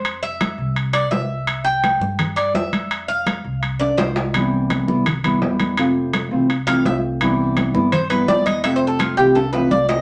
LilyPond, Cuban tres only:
\new Staff \with { instrumentName = "Cuban tres" } { \time 4/4 \key f \lydian \tempo 4 = 168 c''8 e''4. r8 d''8 e''4~ | e''8 g''4. r8 d''8 e''4~ | e''8 f''4. r8 d''8 c''8 r8 | r1 |
r2 r8 f''8 e''8 r8 | r2 c''8 b'8 d''8 ees''8 | \tuplet 3/2 { e''8 c''8 a'8 } f'8 g'8 a'8 b'8 d''8 ees''8 | }